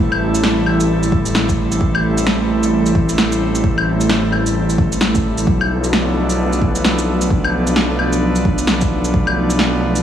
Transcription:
0.00 5.45 A1 medium
0.00 5.47 G3 medium
0.00 5.47 A3 medium
0.00 5.47 C4 medium
0.00 6.98 E4 medium
0.00 10.03 A4 medium
0.12 claves medium
0.35 shaker medium
0.43 snare loud
0.66 claves soft
0.80 shaker medium
1.03 shaker soft
1.12 kick loud
1.26 shaker medium
1.35 snare loud
1.49 kick loud
1.49 shaker soft
1.72 shaker medium
1.81 kick loud
1.95 claves medium
2.18 shaker medium
2.27 snare loud
2.63 shaker medium
2.86 shaker soft
2.95 kick loud
3.09 shaker medium
3.18 snare loud
3.32 shaker soft
3.55 shaker medium
3.64 kick loud
3.78 claves medium
4.01 shaker medium
4.09 snare loud
4.32 claves soft
4.46 shaker medium
4.70 shaker soft
4.78 kick loud
4.92 shaker soft
5.01 snare loud
5.15 kick loud
5.15 shaker soft
5.38 shaker medium
5.46 10.03 B1 medium
5.46 10.03 F3 medium
5.46 kick loud
5.61 claves medium
5.66 10.03 A3 medium
5.66 10.03 D4 medium
5.84 10.03 B3 medium
5.84 shaker soft
5.93 snare loud
6.30 shaker medium
6.53 shaker soft
6.62 kick loud
6.75 shaker medium
6.85 snare loud
6.98 shaker soft
7.21 shaker medium
7.30 kick loud
7.44 claves medium
7.67 shaker medium
7.76 snare medium
7.99 claves soft
8.13 shaker soft
8.36 shaker soft
8.45 kick loud
8.58 shaker medium
8.67 snare loud
8.81 kick medium
8.81 shaker soft
9.04 shaker soft
9.14 kick loud
9.27 claves medium
9.50 shaker medium
9.59 snare medium
9.96 shaker medium

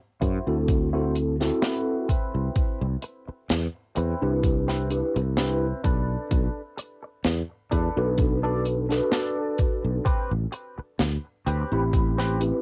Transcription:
0.21 0.38 F#2 loud
0.21 0.57 E4 medium
0.21 0.58 F#4 medium
0.21 0.58 C5 medium
0.21 kick medium
0.21 closed hi-hat medium
0.47 1.50 D2 medium
0.47 0.88 C4 medium
0.47 0.88 E4 medium
0.47 0.88 F#4 medium
0.47 0.88 A4 medium
0.68 kick loud
0.68 closed hi-hat medium
0.93 1.34 C4 medium
0.93 1.15 E4 loud
0.93 1.35 E4 medium
0.93 1.15 F#4 loud
0.93 1.35 F#4 medium
0.93 1.35 A4 medium
0.93 1.16 C5 loud
1.15 closed hi-hat medium
1.40 2.06 C4 medium
1.40 2.06 E4 medium
1.40 2.07 F#4 medium
1.40 2.07 A4 loud
1.40 muted clean electric guitar stroke soft
1.40 snare soft
1.40 closed hi-hat medium
1.62 2.08 E4 medium
1.62 2.09 F#4 medium
1.62 2.09 B4 medium
1.62 snare loud
1.62 closed hi-hat medium
2.08 2.85 C4 medium
2.08 2.86 E4 medium
2.08 2.86 B4 loud
2.08 kick loud
2.08 closed hi-hat medium
2.35 2.48 C2 medium
2.56 muted fretless electric bass stroke soft
2.56 kick loud
2.56 closed hi-hat medium
2.81 2.95 C2 medium
3.02 muted clean electric guitar stroke medium
3.02 closed hi-hat medium
3.27 muted clean electric guitar stroke soft
3.27 muted fretless electric bass stroke soft
3.49 3.66 E2 loud
3.49 snare loud
3.49 closed hi-hat medium
3.96 4.13 E2 loud
3.96 4.33 C4 medium
3.96 4.33 E4 medium
3.96 4.33 B4 medium
3.96 closed hi-hat medium
4.22 5.01 C2 loud
4.22 4.85 D4 medium
4.22 4.85 E4 medium
4.22 4.86 G4 medium
4.22 4.86 B4 medium
4.43 kick loud
4.43 closed hi-hat medium
4.68 4.90 C4 loud
4.68 4.90 E4 loud
4.68 4.91 B4 loud
4.68 snare soft
4.90 5.17 D4 medium
4.90 5.18 E4 medium
4.90 5.18 G4 medium
4.90 5.18 B4 medium
4.90 closed hi-hat medium
5.15 5.72 C2 loud
5.15 muted clean electric guitar stroke soft
5.15 closed hi-hat medium
5.37 5.83 C4 medium
5.37 5.64 D4 medium
5.37 5.65 E4 medium
5.37 5.84 E4 medium
5.37 5.65 G4 medium
5.37 5.84 B4 medium
5.37 5.65 B4 medium
5.37 snare loud
5.37 closed hi-hat medium
5.84 6.15 B1 medium
5.84 6.60 D4 medium
5.84 6.61 A4 medium
5.84 6.61 B4 loud
5.84 kick loud
5.84 closed hi-hat medium
6.31 6.47 B1 loud
6.31 kick loud
6.31 closed hi-hat medium
6.77 muted clean electric guitar stroke medium
6.77 closed hi-hat medium
7.02 muted clean electric guitar stroke soft
7.24 7.41 E2 loud
7.24 snare loud
7.24 closed hi-hat medium
7.71 7.88 E2 loud
7.71 8.08 D4 medium
7.71 8.08 A4 medium
7.71 8.08 B4 medium
7.71 kick medium
7.71 closed hi-hat medium
7.96 9.00 B1 loud
7.96 8.38 D4 medium
7.96 8.38 F#4 medium
7.96 8.38 A4 medium
7.96 8.38 B4 medium
8.18 kick loud
8.18 closed hi-hat medium
8.43 8.84 D4 medium
8.43 8.65 D4 loud
8.43 8.85 F#4 medium
8.43 8.66 A4 loud
8.43 8.85 A4 medium
8.43 8.85 B4 medium
8.43 8.66 D5 loud
8.65 closed hi-hat medium
8.89 10.03 D4 loud
8.89 10.03 F#4 medium
8.89 10.04 A4 medium
8.89 10.04 B4 loud
8.89 muted clean electric guitar stroke soft
8.89 snare soft
8.89 closed hi-hat medium
9.11 9.59 D4 medium
9.11 9.59 A4 medium
9.11 9.60 D5 medium
9.11 snare loud
9.11 closed hi-hat medium
9.58 kick loud
9.58 closed hi-hat medium
9.85 9.98 B1 medium
10.05 10.31 C4 loud
10.05 10.31 G4 loud
10.05 10.32 B4 loud
10.05 muted fretless electric bass stroke soft
10.05 kick loud
10.05 closed hi-hat medium
10.31 10.45 A1 medium
10.52 muted clean electric guitar stroke medium
10.52 closed hi-hat medium
10.78 muted clean electric guitar stroke soft
10.78 muted fretless electric bass stroke soft
10.99 11.16 D2 medium
10.99 snare loud
10.99 closed hi-hat medium
11.46 11.63 D2 loud
11.46 11.83 C4 medium
11.46 11.83 G4 medium
11.46 11.83 B4 medium
11.46 closed hi-hat medium
11.71 12.51 A1 loud
11.71 12.35 C4 medium
11.71 12.35 E4 medium
11.71 12.35 G4 medium
11.71 12.36 B5 medium
11.93 kick loud
11.93 closed hi-hat medium
12.18 12.40 C4 loud
12.18 12.40 G4 loud
12.18 12.41 B4 loud
12.18 snare soft
12.40 12.62 C4 medium
12.40 12.62 E4 medium
12.40 12.62 G4 medium
12.40 12.62 B4 medium
12.40 closed hi-hat medium

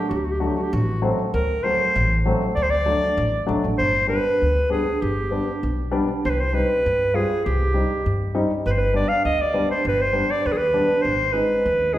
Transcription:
0.00 0.11 G4 medium
0.10 0.48 D2 medium
0.10 0.18 F#4 medium
0.17 0.26 G4 medium
0.25 0.33 F#4 medium
0.32 0.42 G4 medium
0.40 0.56 F#3 medium
0.40 0.56 A3 medium
0.40 0.56 D4 medium
0.40 0.49 F#4 medium
0.47 0.58 G4 medium
0.56 0.65 F#4 medium
0.63 0.75 G4 medium
0.73 1.10 A1 loud
0.73 1.03 F#4 medium
1.02 1.18 F#3 medium
1.02 1.18 A3 medium
1.02 1.18 C4 medium
1.33 1.71 D2 medium
1.33 1.65 A#4 medium
1.64 1.80 F#3 medium
1.64 1.80 A3 medium
1.64 1.80 C4 medium
1.64 2.26 C5 loud
1.96 2.32 A1 loud
2.25 2.41 F#3 medium
2.25 2.42 A3 medium
2.25 2.42 C4 medium
2.55 2.94 D2 medium
2.55 2.65 D5 loud
2.63 2.72 C5 medium
2.70 3.49 D5 loud
2.86 3.02 F#3 medium
2.86 3.02 A3 medium
2.86 3.02 D4 medium
3.17 3.36 A1 loud
3.47 3.63 C2 medium
3.47 3.63 F#3 medium
3.47 3.63 A3 medium
3.47 3.63 D4 medium
3.64 3.78 A1 medium
3.78 4.17 G1 medium
3.78 4.07 C5 loud
4.07 4.24 G3 medium
4.07 4.24 B3 soft
4.07 4.24 D4 medium
4.07 4.67 B4 medium
4.42 4.78 D2 medium
4.70 4.86 G3 medium
4.70 4.86 B3 medium
4.70 4.86 D4 medium
4.70 5.03 G#4 medium
5.02 5.39 G1 medium
5.02 5.93 G4 medium
5.31 5.47 G3 soft
5.31 5.47 B3 medium
5.31 5.47 D4 medium
5.63 5.99 B1 medium
5.91 6.07 G3 medium
5.91 6.08 B3 medium
5.91 6.08 D4 medium
6.25 6.61 C2 medium
6.25 6.32 C5 medium
6.30 6.42 B4 medium
6.40 6.56 C5 medium
6.53 6.68 G3 medium
6.53 6.69 C4 soft
6.53 6.69 D#4 medium
6.53 7.17 B4 loud
6.86 7.22 G2 medium
7.14 7.29 G3 medium
7.14 7.29 C4 medium
7.14 7.29 F4 medium
7.14 7.45 G#4 medium
7.46 7.82 C2 medium
7.46 8.31 G4 medium
7.74 7.89 G3 medium
7.74 7.89 C4 soft
7.74 7.90 D#4 medium
8.06 8.42 G2 medium
8.34 8.50 G3 medium
8.34 8.50 C4 medium
8.34 8.50 D#4 medium
8.66 9.01 G1 medium
8.66 8.71 B4 medium
8.66 8.79 C5 medium
8.78 8.94 B4 medium
8.93 9.09 G3 medium
8.93 9.09 B3 soft
8.93 9.09 D4 medium
8.93 9.10 D5 medium
9.09 9.24 F5 loud
9.25 9.61 D2 medium
9.25 9.43 D#5 medium
9.41 9.70 D5 medium
9.54 9.69 G3 medium
9.54 9.69 B3 medium
9.54 9.70 D4 medium
9.71 9.84 C5 medium
9.85 10.21 G1 medium
9.85 10.03 B4 medium
10.02 10.32 C5 medium
10.13 10.29 G3 medium
10.13 10.29 B3 medium
10.13 10.29 D4 medium
10.31 10.48 D5 medium
10.46 10.81 D#2 medium
10.46 10.54 B4 medium
10.52 10.59 G#4 medium
10.58 11.04 B4 loud
10.74 10.89 G3 medium
10.74 10.89 B3 medium
10.74 10.89 D4 medium
11.02 11.40 G#1 medium
11.02 11.34 C5 medium
11.33 11.48 G#3 medium
11.33 11.48 C4 soft
11.33 11.48 D#4 medium
11.33 11.95 B4 loud
11.66 11.98 D#2 medium
11.93 11.98 G#3 medium
11.93 11.98 C4 soft
11.93 11.98 D#4 medium
11.93 11.98 G#4 medium

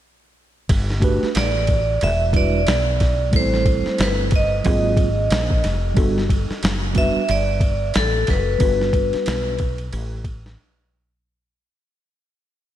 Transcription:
0.69 1.20 G1 loud
0.69 kick loud
0.69 ride medium
0.90 snare soft
1.00 1.26 A3 medium
1.00 1.27 D4 medium
1.00 1.27 F#4 medium
1.00 1.28 G4 medium
1.00 1.28 B4 medium
1.00 kick medium
1.00 ride medium
1.23 muted fretless electric bass stroke soft
1.23 snare soft
1.35 1.98 A1 loud
1.35 2.04 D5 medium
1.35 snare loud
1.35 hi-hat pedal soft
1.35 ride medium
1.67 kick medium
1.67 ride medium
2.01 2.65 E1 loud
2.01 2.18 E5 medium
2.01 ride medium
2.32 2.58 G3 medium
2.32 2.59 D4 medium
2.32 2.59 E4 soft
2.32 2.60 F#4 soft
2.32 2.60 B4 medium
2.32 3.37 D5 medium
2.32 kick medium
2.32 ride soft
2.67 3.30 B1 medium
2.67 snare loud
2.67 hi-hat pedal medium
2.67 ride medium
3.00 kick medium
3.00 snare soft
3.00 ride medium
3.31 3.83 A1 medium
3.31 4.26 G3 medium
3.31 4.26 A3 medium
3.31 3.41 B3 soft
3.31 4.27 E4 medium
3.31 kick loud
3.31 ride medium
3.35 4.28 A4 medium
3.35 4.02 C5 loud
3.40 4.30 C4 medium
3.54 snare soft
3.65 kick medium
3.65 ride soft
3.86 muted fretless electric bass stroke soft
3.86 snare soft
3.98 4.62 G1 medium
3.98 snare loud
3.98 hi-hat pedal soft
3.98 ride medium
4.03 4.17 B4 medium
4.31 kick loud
4.31 ride medium
4.36 5.62 D#5 medium
4.64 5.28 G#1 loud
4.64 5.05 F#3 medium
4.64 5.06 A#3 medium
4.64 5.06 C4 medium
4.64 5.06 F4 medium
4.64 5.07 G#4 medium
4.64 kick medium
4.64 ride medium
4.97 kick medium
4.97 ride soft
5.30 5.62 A#1 medium
5.30 snare medium
5.30 hi-hat pedal medium
5.30 ride medium
5.50 kick medium
5.64 5.95 F1 medium
5.64 snare soft
5.64 ride medium
5.94 6.47 G1 medium
5.94 6.21 G3 medium
5.94 6.21 B3 medium
5.94 6.22 D4 medium
5.94 6.22 F#4 medium
5.94 6.22 A4 medium
5.94 kick loud
5.94 ride medium
6.18 snare soft
6.29 kick medium
6.29 ride medium
6.50 muted fretless electric bass stroke soft
6.50 snare soft
6.63 7.13 F#1 medium
6.63 snare loud
6.63 hi-hat pedal soft
6.63 ride medium
6.93 7.20 G3 medium
6.93 7.20 B3 medium
6.93 7.21 D4 medium
6.93 7.21 F#4 medium
6.93 7.22 B4 medium
6.93 kick medium
6.93 ride medium
6.98 7.31 E5 loud
7.16 muted fretless electric bass stroke soft
7.29 7.92 G1 medium
7.29 7.92 D5 loud
7.29 ride medium
7.60 kick medium
7.60 ride soft
7.94 8.27 A1 medium
7.94 8.27 A4 medium
7.94 snare medium
7.94 hi-hat pedal soft
7.94 ride medium
8.27 8.59 F#1 medium
8.27 9.57 B4 medium
8.27 kick medium
8.27 snare soft
8.27 ride medium
8.58 9.11 G1 medium
8.58 9.53 G3 medium
8.58 9.54 B3 medium
8.58 9.54 D4 medium
8.58 9.55 F#4 medium
8.58 9.55 B4 medium
8.58 kick medium
8.58 ride medium
8.81 snare soft
8.93 kick medium
8.93 ride soft
9.13 muted fretless electric bass stroke soft
9.13 snare soft
9.13 ride soft
9.26 9.90 B1 medium
9.26 snare loud
9.26 hi-hat pedal soft
9.26 ride medium
9.59 kick loud
9.59 ride medium
9.78 ride soft
9.93 10.55 A1 medium
9.93 ride medium
10.24 kick medium
10.24 ride medium
10.46 snare soft

